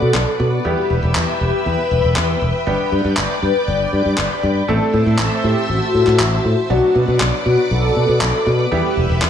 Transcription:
Already playing: F#3 B3 D4 F#4 A4 B4 D5 F#5 D6
0.02 B2
0.14 B1, clap
0.40 B2
0.65 E2 G3 B3 E4 G4 E5 G5 E6
0.90 E1
1.03 E1
1.15 E2, clap
1.41 E1 G4
1.66 E2 B4
1.91 E1
2.04 E1
2.16 E2, clap
2.42 E1
2.66 G1 G3 B3 D4 G4 B4 D5 D6
2.92 G2
3.05 G2
3.17 G1, clap
3.42 G2 B4
3.67 G1 D5
3.93 G2
4.05 G2
4.18 G1, clap
4.43 G2
4.68 A1 A3 C4 E4 A4 C5 E5 A5 E6
4.94 A2
5.06 A2
5.19 A1, clap
5.44 A2 G4
5.69 A1 F#4
5.94 A2
6.07 A2, clap
6.20 A1, clap
6.45 A2
6.70 B1 F#3 B3 D4 F#4 B4 D5 F#5 D6
6.95 B2
7.08 B2
7.20 B1, clap
7.45 B2 F#4
7.71 B1 A4
7.96 B2
8.09 B2
8.21 B1, clap
8.46 B2
8.71 E2 G3 B3 E4 G4 E5 G5 E6
8.97 E1
9.09 E1
9.22 E2, clap

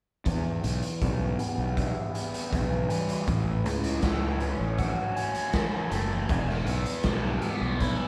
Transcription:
0.25 E2, kick, closed hi-hat
0.62 B1 E3, closed hi-hat
0.82 closed hi-hat
1.02 B1 G3, kick, closed hi-hat
1.37 B3, closed hi-hat
1.58 B1
1.75 E4, kick, closed hi-hat
2.13 B3, closed hi-hat
2.34 closed hi-hat
2.51 B1 E3, kick, closed hi-hat
2.89 E3 G3, closed hi-hat
3.09 closed hi-hat
3.27 A1 A2, kick, closed hi-hat
3.65 C#2 E3, closed hi-hat
3.84 closed hi-hat
4.02 C#2 A3, kick, snare, closed hi-hat
4.40 C#4, closed hi-hat
4.59 A1
4.78 F#4, kick, closed hi-hat
5.16 C#4, closed hi-hat
5.35 closed hi-hat
5.53 E3, kick, snare, closed hi-hat
5.90 F#1 A3, closed hi-hat
6.28 E1 E2, kick, closed hi-hat
6.49 snare
6.66 B1 E3, closed hi-hat
6.86 closed hi-hat
7.03 B1 G3, kick, snare, closed hi-hat
7.42 B3, closed hi-hat
7.61 B1
7.80 E4, kick, closed hi-hat

